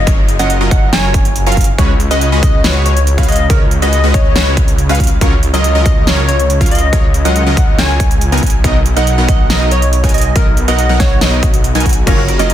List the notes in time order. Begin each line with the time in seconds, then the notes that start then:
Already playing: F#1 D#5, downlifter
0.07 F#3 C#4 F4 A#4 C#5, kick, closed hi-hat
0.28 closed hi-hat
0.39 F#3 C#4 F4 A#4 D#5 F#5, closed hi-hat
0.50 closed hi-hat
0.61 F#3 C#4 F4 A#4 D#5
0.71 F#5, kick, closed hi-hat
0.93 F#3 C#4 F4 A#4 C#5 G#5, snare, closed hi-hat
1.14 kick, closed hi-hat
1.25 closed hi-hat
1.36 closed hi-hat
1.47 F#3 C#4 F4 A#4 F5, closed hi-hat
1.52 closed hi-hat
1.57 kick, closed hi-hat
1.61 closed hi-hat
1.64 closed hi-hat
1.78 C#2 G#3 C#4 F#4 B4 C#5, kick, closed hi-hat
2.00 closed hi-hat
2.11 G#3 C#4 F#4 B4 D#5, closed hi-hat
2.21 closed hi-hat
2.32 G#3 C#4 F#4 B4 D#5
2.43 D#5, kick, closed hi-hat
2.64 G#3 C#4 F#4 B4 C#5, snare, closed hi-hat
2.86 C#5, closed hi-hat
2.97 closed hi-hat
3.07 closed hi-hat
3.18 G#3 C#4 F#4 B4 F5, kick, closed hi-hat
3.23 closed hi-hat
3.28 D#5, closed hi-hat
3.32 closed hi-hat
3.36 D#5, closed hi-hat
3.50 G#3 C#4 F#4 A#4 B4 C#5, kick, closed hi-hat
3.71 closed hi-hat
3.82 G#3 C#4 F#4 B4 D#5, closed hi-hat
3.93 D#5, closed hi-hat
4.04 G#3 C#4 F#4 B4 D#5
4.14 C#5, kick, closed hi-hat
4.25 C#5
4.36 G#3 C#4 F#4 B4 C#5, snare, closed hi-hat
4.57 kick, closed hi-hat
4.68 closed hi-hat
4.78 closed hi-hat
4.89 G#3 C#4 F#4 B4 F5, closed hi-hat
4.95 closed hi-hat
5.00 kick, closed hi-hat
5.04 closed hi-hat
5.07 closed hi-hat
5.21 C#2 F#3 C#4 F4 A#4 C#5, kick, closed hi-hat
5.43 closed hi-hat
5.54 F#3 C#4 F4 A#4 D#5, closed hi-hat
5.64 closed hi-hat
5.75 F#3 C#4 F4 A#4 D#5
5.86 D#5, kick, closed hi-hat
6.07 F#3 C#4 F4 A#4 C#5, snare, closed hi-hat
6.28 C#5, closed hi-hat
6.39 closed hi-hat
6.50 closed hi-hat
6.61 F#3 C#4 F4 A#4 F5, kick, closed hi-hat
6.66 closed hi-hat
6.71 D#5, closed hi-hat
6.75 closed hi-hat
6.78 closed hi-hat
6.93 F#3 C#4 F4 A#4 C#5, kick, closed hi-hat
7.14 closed hi-hat
7.25 F#3 C#4 F4 A#4 D#5 F#5, closed hi-hat
7.36 closed hi-hat
7.47 F#3 C#4 F4 A#4 D#5
7.57 F#5, kick, closed hi-hat
7.79 F#3 C#4 F4 A#4 C#5 G#5, snare, closed hi-hat
8.00 kick, closed hi-hat
8.11 closed hi-hat
8.21 closed hi-hat
8.32 F#3 B3 D#4 A#4 G#5, closed hi-hat
8.37 closed hi-hat
8.43 B1, kick, closed hi-hat
8.46 closed hi-hat
8.50 closed hi-hat
8.64 F#3 B3 D#4 A#4 D#5, kick, closed hi-hat
8.86 closed hi-hat
8.97 F#3 B3 D#4 A#4 D#5 F#5, closed hi-hat
9.07 closed hi-hat
9.18 F#3 B3 D#4 A#4 F#5
9.28 D#5, kick, closed hi-hat
9.50 F#3 B3 D#4 A#4 D#5, snare, closed hi-hat
9.71 C#5, closed hi-hat
9.82 closed hi-hat
9.93 closed hi-hat
10.04 F#3 B3 D#4 A#4 G#5, kick, closed hi-hat
10.09 closed hi-hat
10.14 D#5, closed hi-hat
10.18 closed hi-hat
10.21 D#5, closed hi-hat
10.36 F#3 B3 D#4 A#4 D#5, kick, closed hi-hat
10.57 closed hi-hat
10.68 F#3 B3 D#4 A#4 D#5 F#5, closed hi-hat
10.79 D#5, closed hi-hat
10.89 F#3 B3 D#4 A#4 F#5
11.00 C#5, kick, snare, closed hi-hat
11.11 C#5
11.21 F#3 B3 D#4 A#4 D#5, snare, closed hi-hat, swell
11.43 kick, closed hi-hat
11.54 closed hi-hat
11.64 closed hi-hat
11.75 F#3 B3 D#4 A#4 G#5, closed hi-hat
11.80 closed hi-hat
11.86 kick, closed hi-hat
11.89 closed hi-hat
11.93 closed hi-hat
12.06 F#1 F#3 A#3 C#4 F4 A#4 C#5, kick, closed hi-hat, crash
12.18 F#4
12.28 A#4, closed hi-hat
12.37 F#3 A#3 C#4 F4 A#4 C#5 D#5, closed hi-hat
12.50 A#4, closed hi-hat